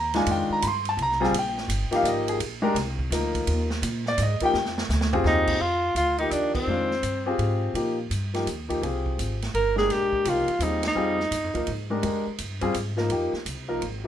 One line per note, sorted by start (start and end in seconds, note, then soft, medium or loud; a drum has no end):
0.00 0.26 D#2 medium
0.00 0.16 A#5 loud
0.14 0.60 D#3 medium
0.14 0.60 G#3 medium
0.14 0.61 D4 medium
0.14 0.61 F4 medium
0.14 0.28 G#5 medium
0.14 snare medium
0.14 ride medium
0.26 0.48 F2 medium
0.26 ride medium
0.31 0.52 G5 medium
0.49 0.64 A#5 loud
0.49 muted upright bass stroke soft
0.62 0.97 G2 loud
0.62 0.65 B5 medium
0.62 hi-hat pedal medium
0.62 ride medium
0.67 0.87 C6 medium
0.85 1.00 A5 loud
0.85 ride soft
0.97 1.32 C2 medium
0.97 ride medium
1.02 1.23 A#5 loud
1.11 snare soft
1.20 1.32 G3 medium
1.20 1.33 C4 medium
1.20 1.32 F4 medium
1.20 1.33 G#4 medium
1.20 snare soft
1.25 1.35 G#5 medium
1.32 1.68 A#1 medium
1.32 ride medium
1.39 1.91 G5 medium
1.57 snare medium
1.68 1.90 G1 medium
1.68 hi-hat pedal medium
1.68 ride medium
1.91 2.37 F3 medium
1.91 2.38 A#3 medium
1.91 2.38 D#4 medium
1.91 2.38 G4 medium
1.91 muted upright bass stroke soft
1.91 snare soft
1.91 ride medium
1.96 2.06 F5 loud
2.03 2.39 G#1 medium
2.03 2.06 D5 medium
2.03 hi-hat pedal medium
2.03 ride medium
2.08 2.29 D#5 medium
2.28 2.36 G#4 medium
2.28 ride medium
2.39 2.74 A#1 medium
2.39 ride medium
2.62 2.74 G#3 medium
2.62 2.74 D4 medium
2.62 2.74 G4 medium
2.62 2.75 A#4 medium
2.75 3.10 C2 loud
2.75 snare soft
2.75 ride medium
2.99 kick medium
3.10 3.45 D2 loud
3.10 3.65 F3 medium
3.10 3.66 A#3 medium
3.10 3.66 D#4 medium
3.10 3.66 A#4 medium
3.10 snare soft
3.10 hi-hat pedal medium
3.10 ride medium
3.35 kick medium
3.35 ride medium
3.47 3.82 D#2 medium
3.47 ride medium
3.70 snare medium
3.82 4.17 A#2 loud
3.82 hi-hat pedal medium
3.82 ride medium
4.06 4.19 D5 loud
4.06 snare soft
4.18 4.39 G#2 loud
4.18 snare soft
4.18 hi-hat pedal medium
4.18 ride medium
4.22 4.42 D#5 medium
4.40 4.53 F3 medium
4.40 4.53 A#3 medium
4.40 4.53 D#4 medium
4.40 4.53 G4 medium
4.40 muted upright bass stroke soft
4.40 kick medium
4.40 ride medium
4.45 4.76 G5 loud
4.54 4.88 F2 loud
4.54 snare medium
4.65 snare medium
4.78 snare loud
4.89 5.23 D2 loud
4.89 snare medium
4.89 hi-hat pedal medium
5.01 snare medium
5.12 5.58 C4 medium
5.12 5.59 F4 medium
5.12 5.58 G4 medium
5.12 5.59 G#4 medium
5.12 floor tom loud
5.24 5.59 D#2 loud
5.24 5.63 D#4 loud
5.24 snare medium
5.47 kick medium
5.47 crash medium
5.59 5.94 F2 medium
5.59 5.96 F4 medium
5.95 6.30 D2 medium
5.95 6.18 F4 medium
5.95 hi-hat pedal medium
5.95 ride medium
6.18 6.65 F3 medium
6.18 6.65 A#3 medium
6.18 6.33 D#4 medium
6.18 6.66 D#4 medium
6.18 6.66 G4 medium
6.18 ride soft
6.31 6.66 D#2 medium
6.31 6.54 D4 medium
6.31 hi-hat pedal medium
6.31 ride medium
6.55 7.58 C4 medium
6.55 kick medium
6.55 crash medium
6.67 7.02 F2 medium
6.67 6.88 D#3 medium
6.67 6.89 G#3 soft
6.67 6.89 D4 medium
6.67 6.89 F4 medium
6.91 snare soft
7.03 7.38 G2 medium
7.03 hi-hat pedal medium
7.03 ride medium
7.26 7.72 C4 medium
7.26 7.72 F4 medium
7.26 7.72 G4 medium
7.26 7.73 G#4 medium
7.38 7.73 G#2 medium
7.38 ride medium
7.74 8.09 A#2 medium
7.74 7.95 F3 medium
7.74 7.96 A#3 medium
7.74 7.96 D#4 medium
7.74 7.96 G4 medium
7.74 ride medium
8.10 8.45 G2 medium
8.10 hi-hat pedal medium
8.10 ride medium
8.34 8.45 F3 medium
8.34 8.45 A#3 medium
8.34 8.46 D#4 medium
8.34 8.46 G4 medium
8.34 snare soft
8.34 ride soft
8.46 8.81 D#2 medium
8.46 hi-hat pedal soft
8.46 ride medium
8.69 8.81 F3 medium
8.69 8.80 A#3 medium
8.69 8.81 D#4 medium
8.69 8.80 G4 medium
8.69 kick soft
8.69 ride soft
8.82 9.17 C2 medium
8.82 9.36 C4 soft
8.82 9.36 F4 soft
8.82 9.36 G4 medium
8.82 9.37 G#4 medium
8.82 ride medium
9.06 kick medium
9.18 9.53 G#1 medium
9.18 hi-hat pedal medium
9.18 ride medium
9.42 snare medium
9.42 ride soft
9.54 9.88 G1 medium
9.54 9.76 A#4 medium
9.54 ride medium
9.76 10.22 G#3 medium
9.76 10.22 D4 medium
9.76 10.23 G4 medium
9.76 9.93 G#4 medium
9.76 10.23 A#4 medium
9.76 snare medium
9.90 10.24 A#1 medium
9.90 10.31 G4 loud
9.90 snare soft
9.90 ride medium
10.13 kick medium
10.25 10.46 C2 medium
10.25 10.46 F3 medium
10.25 10.46 A#3 medium
10.25 10.46 D#4 medium
10.25 10.47 G4 medium
10.25 hi-hat pedal soft
10.25 ride medium
10.29 10.64 F4 medium
10.48 muted upright bass stroke soft
10.48 ride soft
10.59 10.94 D#2 medium
10.59 10.81 G3 medium
10.59 10.82 C4 soft
10.59 10.85 D#4 medium
10.59 10.82 F4 soft
10.59 10.82 G#4 medium
10.59 hi-hat pedal medium
10.59 ride medium
10.83 snare medium
10.83 ride medium
10.88 11.89 D#4 medium
10.95 11.31 F2 medium
10.95 11.16 G3 medium
10.95 11.16 C4 medium
10.95 11.17 F4 medium
10.95 11.17 G#4 medium
11.20 snare soft
11.31 11.43 G2 medium
11.31 hi-hat pedal medium
11.31 ride medium
11.43 11.55 F2 medium
11.54 11.67 D#2 medium
11.54 11.66 F3 medium
11.54 11.66 A#3 medium
11.54 11.66 D#4 medium
11.54 11.67 A#4 medium
11.54 kick medium
11.54 ride soft
11.67 12.02 G#2 medium
11.67 ride medium
11.90 12.01 G#3 medium
11.90 12.02 D4 medium
11.90 12.02 G4 medium
11.90 12.02 A#4 medium
12.03 12.25 F2 medium
12.03 12.24 G#3 medium
12.03 12.24 D4 medium
12.03 12.24 G4 soft
12.03 12.25 A#4 medium
12.03 ride medium
12.27 muted upright bass stroke soft
12.38 12.74 G2 medium
12.38 hi-hat pedal medium
12.38 ride medium
12.61 12.73 G3 medium
12.61 12.73 C4 medium
12.61 12.74 F4 medium
12.61 12.74 G#4 medium
12.61 kick soft
12.61 ride soft
12.74 13.09 G#2 medium
12.74 hi-hat pedal medium
12.74 ride medium
12.97 13.09 F3 medium
12.97 13.09 A#3 medium
12.97 13.09 D#4 medium
12.97 13.09 A#4 medium
12.97 snare soft
13.10 13.31 F2 medium
13.10 13.31 F3 medium
13.10 13.31 A#3 medium
13.10 13.32 D#4 medium
13.10 13.32 G4 medium
13.10 ride medium
13.33 muted upright bass stroke soft
13.33 snare soft
13.45 13.81 C2 medium
13.45 hi-hat pedal medium
13.45 ride medium
13.68 13.81 F3 medium
13.68 13.80 A#3 medium
13.68 13.80 D#4 medium
13.68 13.81 A#4 medium
13.82 14.07 G#1 medium
13.82 ride medium